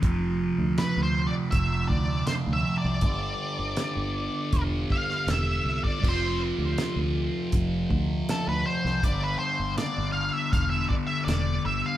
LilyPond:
<<
  \new Staff \with { instrumentName = "Lead electric guitar" } { \time 4/4 \key g \mixolydian \tempo 4 = 80 r4 \tuplet 3/2 { b'8 c''8 d''8 } e''8 d''8 \tuplet 3/2 { c''8 e''8 d''8~ } | d''2~ d''16 r16 f''8 \tuplet 3/2 { e''4 d''8 } | c''8 r2 r8 a'16 b'16 c''8 | d''16 b'16 c''8 d''8 f''16 e''16 f''16 e''16 d''16 e''16 d''8 e''16 f''16 | }
  \new Staff \with { instrumentName = "Distorted electric guitar" } { \clef bass \time 4/4 \key g \mixolydian <f, c f>1 | <g, d g>1 | <f, c f>1 | <g, d g>1 | }
  \new Staff \with { instrumentName = "Fingered electric bass" } { \clef bass \time 4/4 \key g \mixolydian f,,8. d,16 r16 d,8 r16 f,,8 d,8 r16 d,16 r16 c,16 | g,,8 r16 g,,16 r16 g,,8 r16 e,,8 r8 e,,8 c,16 r16 | f,,8. d,16 r16 d,8 r16 f,,8 d,8 r16 d,16 r16 c,16 | g,,8 r16 g,,16 r16 g,,8 r16 e,,8 r8 e,,8 g,,16 r16 | }
  \new DrumStaff \with { instrumentName = "Drums" } \drummode { \time 4/4 <hh bd>4 <hh sn>4 <hh bd>8 bd8 <hh sn>4 | <hh bd>4 <hh sn>4 <hh bd>8 bd16 sn16 <hh sn>8. bd16 | <cymc bd>4 <hh sn>4 <hh bd>8 bd8 <hh sn>8. sn16 | <hh bd>4 <hh sn>4 <hh bd>8 bd8 <hh sn>4 | }
>>